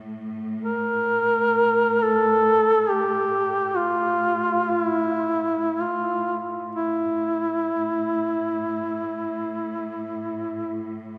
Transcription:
Already playing: A2
0.64 A#4
2.02 A4
2.89 G4
3.75 F4
4.70 F4
4.83 E4
5.81 F4
6.76 E4
7.10 A2

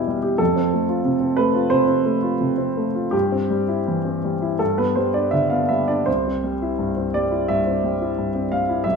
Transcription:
Already playing: B2 G3 E4 G4 B4
0.08 G3
0.23 G4
0.38 F2 A4
0.56 C4
0.73 A3
0.89 F4
1.05 C3
1.21 C4
1.37 A3 B4
1.54 F4
1.70 C3 C5
1.88 C4
2.05 A3
2.22 F4
2.41 C3
2.58 C4
2.77 A3
2.95 F4
3.11 G2 G4
3.32 C4
3.50 G3
3.68 E4
3.88 E3
4.05 C4
4.24 G3
4.42 E4
4.59 G2 A4
4.78 B3 B4
4.96 G3 C5
5.14 D4 D5
5.31 D3 E5
5.50 B3 F5
5.69 G3 E5
5.88 D4 D5
6.06 C2 C5
6.26 C4
6.44 G3
6.62 E4
6.79 G2
6.97 C4
7.14 G3 D5
7.31 E4
7.48 G2 E5
7.67 C4
7.84 G3
8.01 E4
8.18 G2
8.35 C4
8.52 G3 F5
8.69 E4
8.84 B1 E5

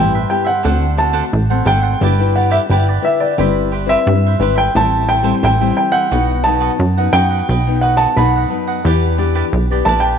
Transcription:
Already playing: A1 G2 B3 E4 G4 B4 C5 E5 G5
0.14 B4 C5 E5
0.30 B3 E4 G4 G5
0.44 B4 C5 E5 F#5
0.63 D2 D3 A3 C4 D4 F#4 A4 C5 F#5
0.97 A3 C4 D4 F#4 A4 C5 F#5 A5
1.13 D4 A4 C5 F#5
1.33 A1
1.50 A3 C4 A4 C5 F#5
1.65 G#1 D4 A4 C5 F#5 G5
1.82 A4 C5 F#5
2.00 G1 G3 D4 E4 G4 B4 D5
2.19 D4 E4 B4
2.35 E4 G4 B4 D5 F#5
2.51 E4 G4 B4 D5 E5
2.69 G1 D3 D4 E4 G4 B4 D5 G5
2.89 G4 B4 D5
3.02 D4 E4 B4 E5
3.20 G4 B4 D5
3.37 G1 G3 C4 E4 G4 B4 C5 E5
3.72 G4 B4 C5 E5
3.86 C4 E4 G4 B4 C5 E5
4.06 G2 G3
4.26 B4 C5 E5
4.39 G#1 C4 E4 G4 B4 C5 E5
4.55 B4 C5 E5 G5
4.74 A1 A2 G3 C4 E4 A4 C5 E5 G5 A5
5.08 A4 C5 E5 G5
5.22 G3 C4 E4 A4 C5 E5 G5
5.43 A1 E3 A4 C5 E5 G5
5.61 G3 C4 E4 C5 E5 G5
5.77 G5
5.92 C5 E5 F#5 G5
6.11 B1 B2 F#3 B3 D#4 F#4 B4 D#5 F#5
6.44 F#3 B3 D#4 F#4 B4 D#5 F#5 A5
6.60 F#4 B4 D#5 F#5
6.79 F#2
6.97 F#3 B3 D#4 B4 D#5 F#5
7.13 F#2 F#4 B4 D#5 F#5 G5
7.30 B4 D#5 F#5
7.49 B1 B2 B4 D#5
7.66 F#3 B3 D#4
7.81 F#4 B4 D#5 F#5
7.97 F#4 B4 D#5 F#5 A5
8.16 B1 F#2 F#3 B3 D#4 F#4 B4 D#5 F#5 B5
8.36 B4 D#5 F#5
8.49 F#3 B3 D#4
8.67 B4 D#5 F#5
8.84 E2 E3 B3 D4 E4 G4 B4 D5
9.18 B3 D4 E4 G4 B4 D5
9.35 E4 G4 B4 D5
9.53 B1
9.71 B3 D4 G4 B4 D5
9.85 A#1 E4 G4 B4 D5 A5
10.00 D5 G5
10.04 G4 B4

